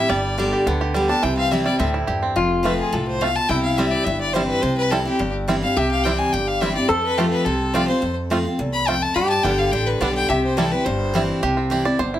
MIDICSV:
0, 0, Header, 1, 6, 480
1, 0, Start_track
1, 0, Key_signature, 0, "major"
1, 0, Tempo, 283286
1, 164, Time_signature, 4, 2, 24, 8
1, 20663, End_track
2, 0, Start_track
2, 0, Title_t, "Fiddle"
2, 0, Program_c, 0, 110
2, 0, Note_on_c, 0, 76, 107
2, 161, Note_on_c, 0, 74, 84
2, 187, Note_off_c, 0, 76, 0
2, 1123, Note_off_c, 0, 74, 0
2, 1848, Note_on_c, 0, 81, 89
2, 2086, Note_on_c, 0, 79, 82
2, 2111, Note_off_c, 0, 81, 0
2, 2314, Note_off_c, 0, 79, 0
2, 2324, Note_on_c, 0, 77, 106
2, 2563, Note_on_c, 0, 76, 88
2, 2589, Note_off_c, 0, 77, 0
2, 2788, Note_off_c, 0, 76, 0
2, 2798, Note_on_c, 0, 74, 81
2, 3017, Note_off_c, 0, 74, 0
2, 3027, Note_on_c, 0, 76, 73
2, 3182, Note_off_c, 0, 76, 0
2, 4481, Note_on_c, 0, 71, 86
2, 4714, Note_off_c, 0, 71, 0
2, 4745, Note_on_c, 0, 68, 79
2, 4971, Note_on_c, 0, 69, 67
2, 4996, Note_off_c, 0, 68, 0
2, 5204, Note_off_c, 0, 69, 0
2, 5214, Note_on_c, 0, 72, 83
2, 5446, Note_on_c, 0, 77, 94
2, 5471, Note_off_c, 0, 72, 0
2, 5686, Note_on_c, 0, 81, 106
2, 5711, Note_off_c, 0, 77, 0
2, 5912, Note_on_c, 0, 79, 94
2, 5937, Note_off_c, 0, 81, 0
2, 6138, Note_off_c, 0, 79, 0
2, 6148, Note_on_c, 0, 77, 88
2, 6387, Note_on_c, 0, 76, 78
2, 6413, Note_off_c, 0, 77, 0
2, 6628, Note_on_c, 0, 74, 97
2, 6654, Note_off_c, 0, 76, 0
2, 6851, Note_on_c, 0, 76, 80
2, 6876, Note_off_c, 0, 74, 0
2, 7115, Note_off_c, 0, 76, 0
2, 7127, Note_on_c, 0, 74, 81
2, 7347, Note_on_c, 0, 72, 77
2, 7372, Note_off_c, 0, 74, 0
2, 7572, Note_off_c, 0, 72, 0
2, 7582, Note_on_c, 0, 71, 92
2, 7828, Note_on_c, 0, 72, 97
2, 7853, Note_off_c, 0, 71, 0
2, 8083, Note_off_c, 0, 72, 0
2, 8094, Note_on_c, 0, 71, 96
2, 8315, Note_on_c, 0, 69, 79
2, 8341, Note_off_c, 0, 71, 0
2, 8567, Note_off_c, 0, 69, 0
2, 8576, Note_on_c, 0, 67, 79
2, 9019, Note_off_c, 0, 67, 0
2, 9547, Note_on_c, 0, 77, 91
2, 9784, Note_on_c, 0, 76, 85
2, 9809, Note_off_c, 0, 77, 0
2, 10005, Note_off_c, 0, 76, 0
2, 10015, Note_on_c, 0, 77, 100
2, 10237, Note_on_c, 0, 79, 87
2, 10263, Note_off_c, 0, 77, 0
2, 10487, Note_on_c, 0, 80, 92
2, 10512, Note_off_c, 0, 79, 0
2, 10724, Note_on_c, 0, 79, 82
2, 10750, Note_off_c, 0, 80, 0
2, 10970, Note_on_c, 0, 77, 95
2, 10995, Note_off_c, 0, 79, 0
2, 11194, Note_on_c, 0, 76, 87
2, 11219, Note_off_c, 0, 77, 0
2, 11434, Note_off_c, 0, 76, 0
2, 11444, Note_on_c, 0, 74, 89
2, 11664, Note_on_c, 0, 72, 78
2, 11689, Note_off_c, 0, 74, 0
2, 11902, Note_off_c, 0, 72, 0
2, 11912, Note_on_c, 0, 71, 108
2, 12161, Note_on_c, 0, 67, 80
2, 12187, Note_off_c, 0, 71, 0
2, 12373, Note_off_c, 0, 67, 0
2, 12383, Note_on_c, 0, 71, 97
2, 12617, Note_on_c, 0, 69, 79
2, 12642, Note_off_c, 0, 71, 0
2, 13109, Note_on_c, 0, 74, 100
2, 13135, Note_off_c, 0, 69, 0
2, 13337, Note_off_c, 0, 74, 0
2, 13347, Note_on_c, 0, 72, 83
2, 13802, Note_off_c, 0, 72, 0
2, 14796, Note_on_c, 0, 83, 96
2, 15036, Note_on_c, 0, 79, 97
2, 15061, Note_off_c, 0, 83, 0
2, 15290, Note_on_c, 0, 81, 100
2, 15315, Note_off_c, 0, 79, 0
2, 15496, Note_on_c, 0, 83, 113
2, 15521, Note_off_c, 0, 81, 0
2, 15737, Note_off_c, 0, 83, 0
2, 15747, Note_on_c, 0, 81, 113
2, 15978, Note_on_c, 0, 79, 98
2, 16004, Note_off_c, 0, 81, 0
2, 16237, Note_on_c, 0, 77, 95
2, 16262, Note_off_c, 0, 79, 0
2, 16459, Note_on_c, 0, 79, 100
2, 16484, Note_off_c, 0, 77, 0
2, 16709, Note_on_c, 0, 71, 82
2, 16735, Note_off_c, 0, 79, 0
2, 16957, Note_on_c, 0, 74, 81
2, 16983, Note_off_c, 0, 71, 0
2, 17182, Note_off_c, 0, 74, 0
2, 17192, Note_on_c, 0, 79, 109
2, 17434, Note_on_c, 0, 76, 93
2, 17459, Note_off_c, 0, 79, 0
2, 17680, Note_off_c, 0, 76, 0
2, 17690, Note_on_c, 0, 72, 94
2, 17917, Note_on_c, 0, 69, 84
2, 17942, Note_off_c, 0, 72, 0
2, 18158, Note_on_c, 0, 71, 95
2, 18183, Note_off_c, 0, 69, 0
2, 18379, Note_on_c, 0, 72, 83
2, 18405, Note_off_c, 0, 71, 0
2, 19118, Note_off_c, 0, 72, 0
2, 20663, End_track
3, 0, Start_track
3, 0, Title_t, "Resonator guitar played with a steel bar"
3, 0, Program_c, 1, 25
3, 4001, Note_on_c, 1, 65, 88
3, 5936, Note_on_c, 1, 64, 86
3, 5979, Note_off_c, 1, 65, 0
3, 9769, Note_on_c, 1, 67, 100
3, 9881, Note_off_c, 1, 64, 0
3, 11384, Note_off_c, 1, 67, 0
3, 11668, Note_on_c, 1, 69, 113
3, 15514, Note_on_c, 1, 67, 99
3, 15628, Note_off_c, 1, 69, 0
3, 17423, Note_off_c, 1, 67, 0
3, 17443, Note_on_c, 1, 67, 88
3, 19062, Note_off_c, 1, 67, 0
3, 20663, End_track
4, 0, Start_track
4, 0, Title_t, "Five-string banjo"
4, 0, Program_c, 2, 105
4, 0, Note_on_c, 2, 67, 60
4, 164, Note_on_c, 2, 55, 82
4, 630, Note_off_c, 2, 55, 0
4, 650, Note_on_c, 2, 55, 63
4, 886, Note_off_c, 2, 67, 0
4, 893, Note_on_c, 2, 67, 54
4, 1131, Note_on_c, 2, 59, 61
4, 1327, Note_off_c, 2, 55, 0
4, 1352, Note_off_c, 2, 67, 0
4, 1372, Note_on_c, 2, 67, 68
4, 1600, Note_on_c, 2, 55, 72
4, 1807, Note_off_c, 2, 59, 0
4, 1853, Note_on_c, 2, 62, 62
4, 2038, Note_off_c, 2, 67, 0
4, 2077, Note_on_c, 2, 52, 69
4, 2082, Note_off_c, 2, 55, 0
4, 2085, Note_off_c, 2, 62, 0
4, 2331, Note_on_c, 2, 60, 53
4, 2568, Note_on_c, 2, 64, 59
4, 2760, Note_off_c, 2, 52, 0
4, 2808, Note_on_c, 2, 55, 69
4, 2998, Note_off_c, 2, 60, 0
4, 3043, Note_on_c, 2, 60, 66
4, 3245, Note_off_c, 2, 64, 0
4, 3289, Note_on_c, 2, 64, 60
4, 3476, Note_off_c, 2, 55, 0
4, 3514, Note_on_c, 2, 67, 56
4, 3723, Note_off_c, 2, 60, 0
4, 3771, Note_on_c, 2, 60, 61
4, 3956, Note_off_c, 2, 64, 0
4, 3999, Note_off_c, 2, 67, 0
4, 4004, Note_off_c, 2, 60, 0
4, 4495, Note_on_c, 2, 57, 65
4, 4503, Note_on_c, 2, 60, 62
4, 4508, Note_on_c, 2, 65, 70
4, 4600, Note_off_c, 2, 57, 0
4, 4602, Note_off_c, 2, 60, 0
4, 4606, Note_off_c, 2, 65, 0
4, 5454, Note_on_c, 2, 57, 67
4, 5462, Note_on_c, 2, 60, 62
4, 5468, Note_on_c, 2, 65, 67
4, 5559, Note_off_c, 2, 57, 0
4, 5560, Note_off_c, 2, 60, 0
4, 5565, Note_off_c, 2, 65, 0
4, 6410, Note_on_c, 2, 55, 72
4, 6422, Note_on_c, 2, 60, 63
4, 6424, Note_on_c, 2, 64, 68
4, 6517, Note_off_c, 2, 55, 0
4, 6519, Note_off_c, 2, 60, 0
4, 6523, Note_off_c, 2, 64, 0
4, 7380, Note_on_c, 2, 55, 67
4, 7385, Note_on_c, 2, 60, 65
4, 7396, Note_on_c, 2, 64, 58
4, 7480, Note_off_c, 2, 55, 0
4, 7484, Note_off_c, 2, 60, 0
4, 7486, Note_off_c, 2, 64, 0
4, 8339, Note_on_c, 2, 55, 68
4, 8345, Note_on_c, 2, 60, 60
4, 8349, Note_on_c, 2, 64, 69
4, 8440, Note_off_c, 2, 55, 0
4, 8440, Note_off_c, 2, 60, 0
4, 8444, Note_off_c, 2, 64, 0
4, 9292, Note_on_c, 2, 55, 68
4, 9301, Note_on_c, 2, 60, 67
4, 9305, Note_on_c, 2, 64, 62
4, 9396, Note_off_c, 2, 55, 0
4, 9397, Note_off_c, 2, 60, 0
4, 9402, Note_off_c, 2, 64, 0
4, 10256, Note_on_c, 2, 55, 65
4, 10266, Note_on_c, 2, 60, 69
4, 10277, Note_on_c, 2, 64, 73
4, 10359, Note_off_c, 2, 55, 0
4, 10361, Note_off_c, 2, 60, 0
4, 10362, Note_off_c, 2, 64, 0
4, 11214, Note_on_c, 2, 55, 63
4, 11221, Note_on_c, 2, 60, 57
4, 11224, Note_on_c, 2, 64, 63
4, 11316, Note_off_c, 2, 55, 0
4, 11318, Note_off_c, 2, 60, 0
4, 11320, Note_off_c, 2, 64, 0
4, 12168, Note_on_c, 2, 57, 66
4, 12176, Note_on_c, 2, 60, 72
4, 12183, Note_on_c, 2, 65, 72
4, 12272, Note_off_c, 2, 57, 0
4, 12277, Note_off_c, 2, 60, 0
4, 12279, Note_off_c, 2, 65, 0
4, 13124, Note_on_c, 2, 57, 60
4, 13129, Note_on_c, 2, 60, 65
4, 13142, Note_on_c, 2, 65, 68
4, 13231, Note_off_c, 2, 57, 0
4, 13234, Note_off_c, 2, 60, 0
4, 13237, Note_off_c, 2, 65, 0
4, 14083, Note_on_c, 2, 57, 66
4, 14089, Note_on_c, 2, 60, 69
4, 14102, Note_on_c, 2, 65, 62
4, 14190, Note_off_c, 2, 57, 0
4, 14195, Note_off_c, 2, 60, 0
4, 14196, Note_off_c, 2, 65, 0
4, 15048, Note_on_c, 2, 57, 63
4, 15059, Note_on_c, 2, 60, 63
4, 15061, Note_on_c, 2, 65, 68
4, 15153, Note_off_c, 2, 57, 0
4, 15156, Note_off_c, 2, 60, 0
4, 15159, Note_off_c, 2, 65, 0
4, 16003, Note_on_c, 2, 55, 70
4, 16013, Note_on_c, 2, 59, 66
4, 16014, Note_on_c, 2, 62, 75
4, 16110, Note_off_c, 2, 55, 0
4, 16112, Note_off_c, 2, 59, 0
4, 16115, Note_off_c, 2, 62, 0
4, 16967, Note_on_c, 2, 55, 58
4, 16976, Note_on_c, 2, 59, 74
4, 16977, Note_on_c, 2, 62, 62
4, 17072, Note_off_c, 2, 55, 0
4, 17075, Note_off_c, 2, 59, 0
4, 17077, Note_off_c, 2, 62, 0
4, 17926, Note_on_c, 2, 55, 66
4, 17935, Note_on_c, 2, 60, 73
4, 17937, Note_on_c, 2, 64, 67
4, 18032, Note_off_c, 2, 55, 0
4, 18033, Note_off_c, 2, 60, 0
4, 18037, Note_off_c, 2, 64, 0
4, 18890, Note_on_c, 2, 55, 63
4, 18897, Note_on_c, 2, 60, 64
4, 18909, Note_on_c, 2, 64, 67
4, 18994, Note_off_c, 2, 55, 0
4, 18998, Note_off_c, 2, 60, 0
4, 19002, Note_off_c, 2, 64, 0
4, 19365, Note_on_c, 2, 67, 99
4, 19606, Note_on_c, 2, 60, 57
4, 19826, Note_off_c, 2, 67, 0
4, 19846, Note_on_c, 2, 67, 55
4, 20085, Note_on_c, 2, 74, 101
4, 20272, Note_off_c, 2, 60, 0
4, 20319, Note_on_c, 2, 72, 105
4, 20326, Note_off_c, 2, 74, 0
4, 20522, Note_off_c, 2, 67, 0
4, 20572, Note_on_c, 2, 64, 59
4, 20663, Note_off_c, 2, 64, 0
4, 20663, Note_off_c, 2, 72, 0
4, 20663, End_track
5, 0, Start_track
5, 0, Title_t, "Steel-string acoustic guitar"
5, 0, Program_c, 3, 25
5, 158, Note_on_c, 3, 43, 78
5, 639, Note_on_c, 3, 50, 78
5, 651, Note_on_c, 3, 55, 75
5, 665, Note_on_c, 3, 59, 83
5, 668, Note_on_c, 3, 67, 102
5, 1076, Note_off_c, 3, 43, 0
5, 1099, Note_off_c, 3, 50, 0
5, 1105, Note_off_c, 3, 55, 0
5, 1112, Note_off_c, 3, 59, 0
5, 1114, Note_off_c, 3, 67, 0
5, 1135, Note_on_c, 3, 50, 105
5, 1579, Note_off_c, 3, 50, 0
5, 1599, Note_on_c, 3, 50, 76
5, 1610, Note_on_c, 3, 55, 91
5, 1626, Note_on_c, 3, 59, 82
5, 1635, Note_on_c, 3, 67, 99
5, 1829, Note_off_c, 3, 67, 0
5, 1841, Note_off_c, 3, 50, 0
5, 1846, Note_off_c, 3, 55, 0
5, 1850, Note_on_c, 3, 67, 65
5, 1855, Note_off_c, 3, 59, 0
5, 1882, Note_on_c, 3, 59, 44
5, 2074, Note_off_c, 3, 67, 0
5, 2086, Note_on_c, 3, 48, 84
5, 2090, Note_off_c, 3, 59, 0
5, 2561, Note_on_c, 3, 52, 78
5, 2577, Note_on_c, 3, 55, 87
5, 2586, Note_on_c, 3, 60, 89
5, 2599, Note_on_c, 3, 64, 87
5, 2781, Note_off_c, 3, 64, 0
5, 2802, Note_off_c, 3, 52, 0
5, 2802, Note_on_c, 3, 64, 60
5, 2810, Note_off_c, 3, 55, 0
5, 2814, Note_off_c, 3, 60, 0
5, 2838, Note_on_c, 3, 60, 50
5, 2999, Note_off_c, 3, 48, 0
5, 3030, Note_off_c, 3, 64, 0
5, 3042, Note_on_c, 3, 45, 94
5, 3048, Note_off_c, 3, 60, 0
5, 3501, Note_off_c, 3, 45, 0
5, 3519, Note_on_c, 3, 43, 77
5, 3979, Note_off_c, 3, 43, 0
5, 3994, Note_on_c, 3, 41, 84
5, 4455, Note_on_c, 3, 53, 84
5, 4469, Note_on_c, 3, 57, 82
5, 4480, Note_on_c, 3, 60, 84
5, 4495, Note_on_c, 3, 65, 98
5, 4913, Note_off_c, 3, 41, 0
5, 4926, Note_off_c, 3, 53, 0
5, 4933, Note_off_c, 3, 57, 0
5, 4939, Note_off_c, 3, 60, 0
5, 4946, Note_off_c, 3, 65, 0
5, 4956, Note_on_c, 3, 45, 94
5, 5417, Note_off_c, 3, 45, 0
5, 5438, Note_on_c, 3, 47, 87
5, 5898, Note_off_c, 3, 47, 0
5, 5915, Note_on_c, 3, 48, 89
5, 6391, Note_on_c, 3, 52, 73
5, 6406, Note_on_c, 3, 55, 89
5, 6419, Note_on_c, 3, 60, 84
5, 6430, Note_on_c, 3, 64, 95
5, 6832, Note_off_c, 3, 48, 0
5, 6854, Note_off_c, 3, 52, 0
5, 6861, Note_off_c, 3, 55, 0
5, 6868, Note_off_c, 3, 60, 0
5, 6873, Note_off_c, 3, 64, 0
5, 6888, Note_on_c, 3, 43, 87
5, 7353, Note_on_c, 3, 52, 90
5, 7369, Note_on_c, 3, 55, 92
5, 7379, Note_on_c, 3, 60, 97
5, 7389, Note_on_c, 3, 64, 102
5, 7798, Note_off_c, 3, 43, 0
5, 7814, Note_off_c, 3, 52, 0
5, 7822, Note_off_c, 3, 55, 0
5, 7827, Note_off_c, 3, 60, 0
5, 7832, Note_off_c, 3, 64, 0
5, 7840, Note_on_c, 3, 48, 96
5, 8307, Note_on_c, 3, 52, 86
5, 8324, Note_on_c, 3, 55, 76
5, 8335, Note_on_c, 3, 60, 91
5, 8346, Note_on_c, 3, 64, 90
5, 8542, Note_off_c, 3, 64, 0
5, 8552, Note_off_c, 3, 52, 0
5, 8561, Note_off_c, 3, 55, 0
5, 8562, Note_on_c, 3, 64, 65
5, 8567, Note_off_c, 3, 60, 0
5, 8599, Note_on_c, 3, 60, 59
5, 8754, Note_off_c, 3, 48, 0
5, 8788, Note_off_c, 3, 64, 0
5, 8798, Note_on_c, 3, 43, 96
5, 8806, Note_off_c, 3, 60, 0
5, 9279, Note_on_c, 3, 52, 81
5, 9291, Note_on_c, 3, 55, 91
5, 9302, Note_on_c, 3, 60, 87
5, 9313, Note_on_c, 3, 64, 100
5, 9507, Note_off_c, 3, 64, 0
5, 9518, Note_off_c, 3, 52, 0
5, 9524, Note_off_c, 3, 55, 0
5, 9527, Note_on_c, 3, 64, 62
5, 9530, Note_off_c, 3, 60, 0
5, 9562, Note_on_c, 3, 60, 50
5, 9712, Note_off_c, 3, 43, 0
5, 9750, Note_off_c, 3, 64, 0
5, 9767, Note_off_c, 3, 60, 0
5, 9775, Note_on_c, 3, 48, 88
5, 10247, Note_on_c, 3, 52, 71
5, 10255, Note_on_c, 3, 55, 85
5, 10272, Note_on_c, 3, 60, 94
5, 10285, Note_on_c, 3, 64, 91
5, 10681, Note_off_c, 3, 48, 0
5, 10700, Note_off_c, 3, 52, 0
5, 10704, Note_off_c, 3, 55, 0
5, 10712, Note_off_c, 3, 60, 0
5, 10719, Note_off_c, 3, 64, 0
5, 10735, Note_on_c, 3, 43, 97
5, 11202, Note_on_c, 3, 52, 76
5, 11215, Note_on_c, 3, 55, 78
5, 11227, Note_on_c, 3, 60, 91
5, 11243, Note_on_c, 3, 64, 91
5, 11426, Note_off_c, 3, 64, 0
5, 11439, Note_off_c, 3, 52, 0
5, 11445, Note_off_c, 3, 55, 0
5, 11446, Note_on_c, 3, 64, 59
5, 11451, Note_off_c, 3, 60, 0
5, 11484, Note_on_c, 3, 60, 54
5, 11640, Note_off_c, 3, 43, 0
5, 11669, Note_off_c, 3, 64, 0
5, 11688, Note_off_c, 3, 60, 0
5, 11689, Note_on_c, 3, 41, 90
5, 12157, Note_on_c, 3, 53, 83
5, 12169, Note_on_c, 3, 57, 93
5, 12191, Note_on_c, 3, 60, 83
5, 12201, Note_on_c, 3, 65, 92
5, 12597, Note_off_c, 3, 41, 0
5, 12614, Note_off_c, 3, 53, 0
5, 12620, Note_off_c, 3, 57, 0
5, 12631, Note_off_c, 3, 60, 0
5, 12636, Note_off_c, 3, 65, 0
5, 12640, Note_on_c, 3, 48, 91
5, 13107, Note_on_c, 3, 53, 77
5, 13127, Note_on_c, 3, 57, 99
5, 13132, Note_on_c, 3, 60, 95
5, 13147, Note_on_c, 3, 65, 110
5, 13335, Note_off_c, 3, 65, 0
5, 13351, Note_off_c, 3, 53, 0
5, 13355, Note_on_c, 3, 65, 66
5, 13361, Note_off_c, 3, 57, 0
5, 13364, Note_off_c, 3, 60, 0
5, 13389, Note_on_c, 3, 60, 48
5, 13552, Note_off_c, 3, 48, 0
5, 13583, Note_off_c, 3, 65, 0
5, 13589, Note_on_c, 3, 41, 79
5, 13600, Note_off_c, 3, 60, 0
5, 14066, Note_on_c, 3, 53, 70
5, 14076, Note_on_c, 3, 57, 77
5, 14085, Note_on_c, 3, 60, 81
5, 14100, Note_on_c, 3, 65, 95
5, 14295, Note_off_c, 3, 65, 0
5, 14311, Note_off_c, 3, 53, 0
5, 14315, Note_off_c, 3, 57, 0
5, 14316, Note_on_c, 3, 65, 61
5, 14320, Note_off_c, 3, 60, 0
5, 14354, Note_on_c, 3, 60, 47
5, 14507, Note_off_c, 3, 41, 0
5, 14543, Note_off_c, 3, 65, 0
5, 14554, Note_on_c, 3, 40, 101
5, 14562, Note_off_c, 3, 60, 0
5, 15012, Note_off_c, 3, 40, 0
5, 15046, Note_on_c, 3, 41, 82
5, 15498, Note_off_c, 3, 41, 0
5, 15528, Note_on_c, 3, 43, 82
5, 15983, Note_on_c, 3, 50, 83
5, 15999, Note_on_c, 3, 55, 81
5, 16009, Note_on_c, 3, 59, 91
5, 16016, Note_on_c, 3, 67, 87
5, 16437, Note_off_c, 3, 43, 0
5, 16447, Note_off_c, 3, 50, 0
5, 16455, Note_off_c, 3, 55, 0
5, 16460, Note_off_c, 3, 59, 0
5, 16464, Note_off_c, 3, 67, 0
5, 16484, Note_on_c, 3, 50, 97
5, 16933, Note_off_c, 3, 50, 0
5, 16954, Note_on_c, 3, 50, 95
5, 16958, Note_on_c, 3, 55, 88
5, 16973, Note_on_c, 3, 59, 95
5, 16984, Note_on_c, 3, 67, 88
5, 17413, Note_off_c, 3, 50, 0
5, 17415, Note_off_c, 3, 55, 0
5, 17423, Note_off_c, 3, 59, 0
5, 17428, Note_off_c, 3, 67, 0
5, 17450, Note_on_c, 3, 48, 96
5, 17908, Note_on_c, 3, 52, 98
5, 17924, Note_on_c, 3, 55, 100
5, 17931, Note_on_c, 3, 60, 83
5, 17946, Note_on_c, 3, 64, 87
5, 18136, Note_off_c, 3, 64, 0
5, 18152, Note_off_c, 3, 52, 0
5, 18157, Note_on_c, 3, 64, 66
5, 18160, Note_off_c, 3, 55, 0
5, 18163, Note_off_c, 3, 60, 0
5, 18193, Note_on_c, 3, 60, 54
5, 18358, Note_off_c, 3, 48, 0
5, 18384, Note_off_c, 3, 64, 0
5, 18400, Note_on_c, 3, 43, 102
5, 18402, Note_off_c, 3, 60, 0
5, 18870, Note_on_c, 3, 52, 89
5, 18884, Note_on_c, 3, 55, 86
5, 18893, Note_on_c, 3, 60, 100
5, 18904, Note_on_c, 3, 64, 98
5, 19314, Note_off_c, 3, 43, 0
5, 19331, Note_off_c, 3, 52, 0
5, 19339, Note_off_c, 3, 55, 0
5, 19343, Note_off_c, 3, 60, 0
5, 19349, Note_off_c, 3, 64, 0
5, 19363, Note_on_c, 3, 48, 86
5, 19823, Note_on_c, 3, 52, 86
5, 19842, Note_on_c, 3, 55, 76
5, 19854, Note_on_c, 3, 60, 86
5, 19859, Note_on_c, 3, 64, 87
5, 20059, Note_off_c, 3, 64, 0
5, 20070, Note_off_c, 3, 52, 0
5, 20079, Note_on_c, 3, 64, 66
5, 20080, Note_off_c, 3, 55, 0
5, 20086, Note_off_c, 3, 60, 0
5, 20112, Note_on_c, 3, 60, 52
5, 20276, Note_off_c, 3, 48, 0
5, 20306, Note_off_c, 3, 64, 0
5, 20317, Note_on_c, 3, 47, 89
5, 20322, Note_off_c, 3, 60, 0
5, 20663, Note_off_c, 3, 47, 0
5, 20663, End_track
6, 0, Start_track
6, 0, Title_t, "Upright bass"
6, 0, Program_c, 4, 32
6, 160, Note_on_c, 4, 31, 97
6, 889, Note_off_c, 4, 31, 0
6, 1124, Note_on_c, 4, 38, 93
6, 1851, Note_off_c, 4, 38, 0
6, 2087, Note_on_c, 4, 36, 91
6, 2813, Note_off_c, 4, 36, 0
6, 3043, Note_on_c, 4, 38, 93
6, 3452, Note_off_c, 4, 38, 0
6, 3522, Note_on_c, 4, 40, 72
6, 3932, Note_off_c, 4, 40, 0
6, 3998, Note_on_c, 4, 29, 88
6, 4727, Note_off_c, 4, 29, 0
6, 4953, Note_on_c, 4, 36, 92
6, 5683, Note_off_c, 4, 36, 0
6, 5916, Note_on_c, 4, 36, 99
6, 6645, Note_off_c, 4, 36, 0
6, 6880, Note_on_c, 4, 31, 91
6, 7607, Note_off_c, 4, 31, 0
6, 7833, Note_on_c, 4, 36, 92
6, 8562, Note_off_c, 4, 36, 0
6, 8804, Note_on_c, 4, 31, 100
6, 9528, Note_off_c, 4, 31, 0
6, 9768, Note_on_c, 4, 36, 86
6, 10491, Note_off_c, 4, 36, 0
6, 10726, Note_on_c, 4, 31, 86
6, 11449, Note_off_c, 4, 31, 0
6, 11676, Note_on_c, 4, 41, 95
6, 12403, Note_off_c, 4, 41, 0
6, 12630, Note_on_c, 4, 36, 84
6, 13360, Note_off_c, 4, 36, 0
6, 13596, Note_on_c, 4, 41, 84
6, 14323, Note_off_c, 4, 41, 0
6, 14554, Note_on_c, 4, 36, 84
6, 15282, Note_off_c, 4, 36, 0
6, 15516, Note_on_c, 4, 43, 96
6, 15880, Note_off_c, 4, 43, 0
6, 15999, Note_on_c, 4, 31, 93
6, 16406, Note_off_c, 4, 31, 0
6, 16479, Note_on_c, 4, 33, 93
6, 16886, Note_off_c, 4, 33, 0
6, 16954, Note_on_c, 4, 35, 84
6, 17364, Note_off_c, 4, 35, 0
6, 17438, Note_on_c, 4, 36, 96
6, 18165, Note_off_c, 4, 36, 0
6, 18397, Note_on_c, 4, 31, 88
6, 19125, Note_off_c, 4, 31, 0
6, 19361, Note_on_c, 4, 36, 98
6, 20087, Note_off_c, 4, 36, 0
6, 20316, Note_on_c, 4, 31, 88
6, 20663, Note_off_c, 4, 31, 0
6, 20663, End_track
0, 0, End_of_file